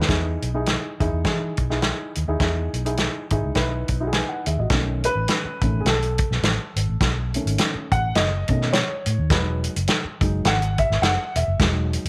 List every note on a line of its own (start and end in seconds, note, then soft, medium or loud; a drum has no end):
0.00 0.24 B4 medium
0.00 snare medium
0.08 0.36 E2 medium
0.08 0.47 D#4 medium
0.08 0.47 E4 medium
0.08 0.47 G#4 medium
0.08 kick loud
0.08 snare medium
0.08 closed hi-hat medium
0.42 0.75 B1 medium
0.42 closed hi-hat medium
0.54 0.90 D#4 medium
0.54 0.90 E4 medium
0.54 0.90 G#4 medium
0.66 snare loud
0.66 closed hi-hat medium
1.00 1.10 E2 medium
1.00 1.19 D#4 medium
1.00 1.20 E4 medium
1.00 1.20 G#4 medium
1.00 kick medium
1.00 closed hi-hat medium
1.13 1.22 E2 medium
1.24 1.52 E3 medium
1.24 1.63 D#4 medium
1.24 1.63 E4 medium
1.24 1.64 G#4 medium
1.24 kick medium
1.24 snare loud
1.24 closed hi-hat medium
1.57 1.91 B1 medium
1.57 kick medium
1.57 closed hi-hat medium
1.70 2.18 D#4 medium
1.70 2.18 E4 medium
1.70 2.18 G#4 medium
1.70 snare soft
1.82 snare loud
1.82 closed hi-hat medium
2.15 2.26 D#2 medium
2.15 closed hi-hat medium
2.28 2.38 D#2 medium
2.28 2.38 D#4 medium
2.28 2.38 E4 medium
2.28 2.38 G#4 medium
2.40 2.67 E2 medium
2.40 2.78 D#4 medium
2.40 2.79 E4 medium
2.40 2.79 G#4 medium
2.40 kick loud
2.40 snare loud
2.40 closed hi-hat medium
2.73 3.06 B1 medium
2.73 closed hi-hat medium
2.85 3.21 D#4 medium
2.85 3.21 E4 medium
2.85 3.22 G#4 medium
2.85 closed hi-hat medium
2.97 snare loud
2.97 closed hi-hat medium
3.30 3.41 G#1 medium
3.30 3.51 D#4 medium
3.30 3.51 E4 medium
3.30 3.51 G#4 medium
3.30 kick medium
3.30 closed hi-hat medium
3.44 3.54 C#2 medium
3.55 3.83 B1 medium
3.55 3.93 D#4 medium
3.55 3.94 E4 medium
3.55 3.94 B4 medium
3.55 kick medium
3.55 snare medium
3.55 closed hi-hat medium
3.88 4.22 B1 medium
3.88 kick medium
3.88 closed hi-hat medium
4.00 4.49 D#4 medium
4.00 4.49 E4 medium
4.00 4.07 F#4 medium
4.07 4.16 G#4 medium
4.13 4.29 B4 soft
4.13 4.29 G#5 medium
4.13 snare loud
4.13 closed hi-hat medium
4.29 4.45 F#5 medium
4.46 4.56 D#2 medium
4.46 4.58 G#4 medium
4.46 4.58 E5 medium
4.46 closed hi-hat medium
4.58 4.68 A1 medium
4.58 4.87 F#4 soft
4.58 4.86 D#5 medium
4.70 5.07 B1 loud
4.70 5.58 D#3 medium
4.70 5.59 A3 soft
4.70 5.59 C#4 medium
4.70 kick loud
4.70 snare loud
4.70 closed hi-hat medium
5.04 5.83 B4 loud
5.04 closed hi-hat medium
5.15 5.25 A1 medium
5.28 snare loud
5.28 closed hi-hat loud
5.45 muted fingered electric bass stroke soft
5.61 5.81 A1 medium
5.61 5.84 D#3 soft
5.61 5.84 A3 soft
5.61 5.84 C#4 medium
5.61 kick medium
5.61 closed hi-hat medium
5.80 5.86 G#4 medium
5.85 6.22 B1 loud
5.85 7.31 A4 medium
5.85 snare loud
5.85 closed hi-hat medium
6.02 closed hi-hat soft
6.18 kick medium
6.18 closed hi-hat medium
6.31 6.41 B1 medium
6.31 snare soft
6.43 6.56 A1 medium
6.43 snare loud
6.43 closed hi-hat medium
6.76 6.86 G#1 medium
6.76 closed hi-hat medium
6.88 6.98 A1 medium
7.01 7.37 B1 medium
7.01 kick loud
7.01 snare loud
7.01 closed hi-hat medium
7.34 8.12 D#3 medium
7.34 8.12 A3 soft
7.34 8.12 C#4 medium
7.34 closed hi-hat medium
7.46 7.55 G#1 medium
7.46 closed hi-hat medium
7.58 snare loud
7.58 closed hi-hat loud
7.75 muted fingered electric bass stroke medium
7.92 8.11 A1 medium
7.92 8.17 F#5 loud
7.92 kick loud
7.92 closed hi-hat medium
8.15 8.42 F#1 medium
8.15 8.69 D#5 loud
8.15 snare loud
8.15 closed hi-hat medium
8.48 8.82 B2 medium
8.48 8.70 D#3 soft
8.48 8.71 A3 soft
8.48 8.71 C#4 medium
8.48 kick medium
8.48 closed hi-hat medium
8.62 snare soft
8.73 9.32 C#5 medium
8.73 snare loud
8.73 closed hi-hat medium
9.06 9.16 A2 medium
9.06 closed hi-hat medium
9.18 9.32 D#2 medium
9.30 9.67 E1 loud
9.30 9.71 F#3 soft
9.30 9.71 G#3 medium
9.30 9.72 D#4 medium
9.30 9.62 B4 medium
9.30 kick loud
9.30 snare medium
9.30 closed hi-hat medium
9.64 closed hi-hat medium
9.76 9.86 F#1 medium
9.76 closed hi-hat medium
9.88 snare loud
9.88 closed hi-hat loud
10.05 muted fingered electric bass stroke soft
10.21 10.40 F#1 medium
10.21 10.43 F#3 soft
10.21 10.43 G#3 soft
10.21 10.43 D#4 medium
10.21 kick medium
10.21 closed hi-hat medium
10.45 10.82 G#1 loud
10.45 10.81 F#5 loud
10.45 snare loud
10.45 closed hi-hat medium
10.62 closed hi-hat soft
10.78 11.01 E5 loud
10.78 kick medium
10.78 closed hi-hat medium
10.90 11.00 G#1 medium
10.90 snare soft
11.02 11.16 F#1 loud
11.02 11.34 F#5 loud
11.02 snare loud
11.02 closed hi-hat medium
11.36 11.45 E1 loud
11.36 11.58 E5 medium
11.36 closed hi-hat medium
11.48 11.57 F#1 medium
11.59 11.96 E1 loud
11.59 12.01 F#3 medium
11.59 12.01 G#3 medium
11.59 12.01 D#4 medium
11.59 kick loud
11.59 snare loud
11.59 closed hi-hat medium
11.93 closed hi-hat medium
12.05 12.09 F#1 medium
12.05 closed hi-hat medium